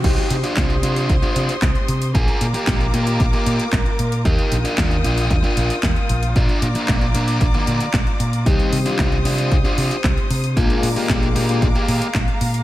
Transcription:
0.04 C2 D#4 G4 C5 C6 D#6, kick, closed hi-hat, crash
0.17 closed hi-hat
0.30 C3, closed hi-hat
0.43 D4 F4, closed hi-hat
0.57 C2, kick, snare, clap, closed hi-hat
0.70 closed hi-hat
0.83 C3 D4 F4, closed hi-hat
0.96 closed hi-hat
1.09 C2, kick, closed hi-hat
1.22 D4 F4, closed hi-hat
1.36 C3, closed hi-hat
1.49 closed hi-hat
1.62 C2, kick, snare, clap, closed hi-hat
1.75 closed hi-hat
1.88 C3, closed hi-hat
2.02 closed hi-hat
2.15 A#1 F4 G#4 A#4 A#5 D6, kick, closed hi-hat
2.28 closed hi-hat
2.41 A#2, closed hi-hat
2.54 A#3 G4, closed hi-hat
2.67 A#1, kick, snare, clap, closed hi-hat
2.81 closed hi-hat
2.94 A#2 A#3 G4, closed hi-hat
3.07 closed hi-hat
3.20 A#1, kick, closed hi-hat
3.33 A#3 G4, closed hi-hat
3.46 A#2, closed hi-hat
3.60 closed hi-hat
3.73 A#1, kick, snare, clap, closed hi-hat
3.86 closed hi-hat
3.99 A#2, closed hi-hat
4.12 closed hi-hat
4.25 D#2 D#4 F4 G4 G5 D#6, kick, closed hi-hat
4.39 closed hi-hat
4.52 A#1, closed hi-hat
4.65 D4 F4, closed hi-hat
4.78 D#2, kick, snare, clap, closed hi-hat
4.91 closed hi-hat
5.04 A#1 D4 F4, closed hi-hat
5.18 closed hi-hat
5.30 D#2, kick, closed hi-hat
5.44 D4 F4, closed hi-hat
5.57 A#1, closed hi-hat
5.70 closed hi-hat
5.83 D#2, kick, snare, clap, closed hi-hat
5.96 closed hi-hat
6.09 A#1, closed hi-hat
6.23 closed hi-hat
6.36 A#1 D4 F4 D5 A#5 D6, kick, closed hi-hat
6.49 closed hi-hat
6.62 A#2, closed hi-hat
6.75 A#3 D4, closed hi-hat
6.88 A#1, kick, snare, clap, closed hi-hat
7.01 closed hi-hat
7.14 A#2 A#3 D4, closed hi-hat
7.28 closed hi-hat
7.41 A#1, kick, closed hi-hat
7.54 D3 A#3, closed hi-hat
7.67 A#2, closed hi-hat
7.81 closed hi-hat
7.94 A#1, kick, snare, clap, closed hi-hat
8.07 closed hi-hat
8.20 A#2, closed hi-hat
8.33 closed hi-hat
8.46 C2 C3 D#3 G3 C4 D#4 G4 C5 C6 D#6, kick, closed hi-hat
8.59 closed hi-hat
8.73 C3, open hi-hat
8.86 D4 F4, closed hi-hat
8.99 C2, kick, snare, clap, closed hi-hat
9.12 closed hi-hat
9.25 C3 D4 F4, open hi-hat
9.38 C3 G3 C4 D#4 G4, closed hi-hat
9.51 C2, kick, closed hi-hat
9.64 D4 F4, closed hi-hat
9.78 C3, open hi-hat
9.91 closed hi-hat
10.04 C2, kick, snare, clap, closed hi-hat
10.18 closed hi-hat
10.30 C3, open hi-hat
10.44 closed hi-hat
10.57 A#1 A#2 G#3 A#3 D4 F4 G#4 F5 A#5 D6, kick, closed hi-hat
10.70 closed hi-hat
10.83 A#2, open hi-hat
10.96 A#3 G4, open hi-hat
11.09 A#1, kick, snare, clap, closed hi-hat
11.23 closed hi-hat
11.36 A#2 A#3 G4, open hi-hat
11.49 A#2 G#3 A#3 D4 F4, closed hi-hat
11.62 A#1, kick, closed hi-hat
11.75 A#3 G4, closed hi-hat
11.88 A#2, open hi-hat
12.02 closed hi-hat
12.15 A#1, kick, snare, clap, closed hi-hat
12.28 closed hi-hat
12.41 A#2, open hi-hat
12.54 closed hi-hat

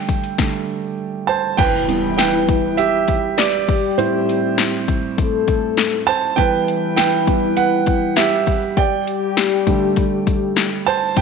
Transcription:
Already playing: D3 G3 A3 D5 G5
0.09 kick, closed hi-hat
0.24 closed hi-hat
0.38 D3 G3 A3, kick, snare
1.27 C5 A5
1.57 E3 E4 B4 G5, kick, closed hi-hat, crash, impact
1.88 E3 G3 B3, closed hi-hat
2.18 B4 G5, snare, closed hi-hat
2.49 kick, closed hi-hat
2.77 G4 E5, closed hi-hat
3.08 kick, closed hi-hat
3.38 G4 D5, snare, closed hi-hat
3.68 G3 G4, kick, open hi-hat
3.97 A2 G3 C4 E4 C5, closed hi-hat
4.29 closed hi-hat
4.58 snare, closed hi-hat
4.88 kick, closed hi-hat
5.18 A3 A4, kick, closed hi-hat
5.48 kick, closed hi-hat
5.77 snare, closed hi-hat
6.07 C5 A5, open hi-hat
6.36 E3 G3 B3 E4 B4 G5, kick, closed hi-hat
6.68 closed hi-hat
6.96 B4 G5, snare, closed hi-hat
7.27 E3 G3 B3, kick, closed hi-hat
7.57 B4 F#5, closed hi-hat
7.86 kick, closed hi-hat
8.16 G4 E5, snare, closed hi-hat
8.46 kick, open hi-hat
8.77 G3 G4 D5 G5, kick, closed hi-hat
9.07 closed hi-hat
9.37 snare, closed hi-hat
9.67 D3 G3 A3, kick, closed hi-hat
9.96 kick, closed hi-hat
10.27 kick, closed hi-hat
10.56 snare, closed hi-hat
10.86 C5 A5, open hi-hat
11.16 E3 G3 B3 E4 B4 G5, kick, closed hi-hat

